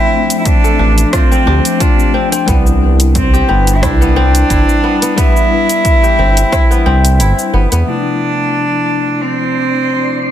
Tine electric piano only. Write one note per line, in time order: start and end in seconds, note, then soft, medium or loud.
0.00 1.45 F3 medium
0.00 1.46 A3 medium
0.00 1.47 C4 medium
0.00 1.48 D4 medium
0.00 2.50 E5 medium
1.45 2.43 F3 medium
1.45 2.44 A3 medium
1.45 2.44 C4 medium
1.45 2.45 D4 medium
1.45 2.45 G4 medium
2.45 3.78 G3 loud
2.45 3.79 D4 medium
2.45 3.78 B4 medium
2.50 3.80 E4 loud
3.81 5.13 G3 medium
3.81 5.14 D4 medium
3.81 5.13 B4 medium
3.85 5.15 E4 medium
5.15 6.81 G3 medium
5.15 6.83 D4 medium
5.15 6.83 E4 loud
5.15 6.82 B4 medium
7.85 10.31 C3 medium
7.85 10.31 F3 medium
7.85 10.31 A3 medium
7.85 10.31 D4 medium
7.89 10.31 E4 medium